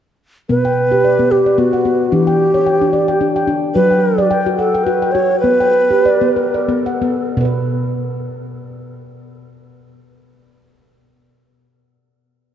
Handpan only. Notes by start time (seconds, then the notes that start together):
0.49 B2 B3
0.65 G5
0.92 G4
1.04 D5
1.19 B3
1.32 B4
1.46 D5
1.58 B3
1.73 F#5
1.85 B3
2.12 E3 D4
2.27 G5
2.54 C#5
2.66 G5
2.81 D4
2.93 D5
3.08 G5
3.21 D4
3.36 G5
3.48 D4
3.75 F#3 F#4
3.91 G5
4.18 D5
4.31 G5
4.46 F#4
4.59 F#5
4.75 G5
4.87 F#4
5.02 G5
5.15 F#4
5.44 B3
5.60 G5
5.91 G4
6.05 D5
6.21 B3
6.36 B4
6.54 D5
6.69 B3
6.86 F#5
7.02 B3
7.37 B2 B3 B4
7.45 B4